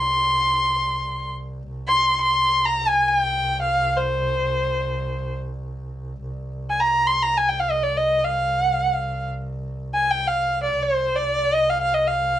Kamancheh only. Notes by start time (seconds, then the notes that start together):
Already playing: C6
1.88 C6
2.21 C6
2.65 A#5
2.87 G#5
3.08 G5
3.61 F5
3.96 C5
6.70 G#5
6.80 A#5
7.07 C6
7.22 A#5
7.37 G#5
7.49 G5
7.59 F5
7.71 D#5
7.83 D5
7.97 D#5
8.24 F5
9.94 G#5
10.11 G5
10.27 F5
10.63 D5
10.83 C5
11.15 D5
11.54 D#5
11.69 F5
11.82 F5
11.94 D#5
12.07 F5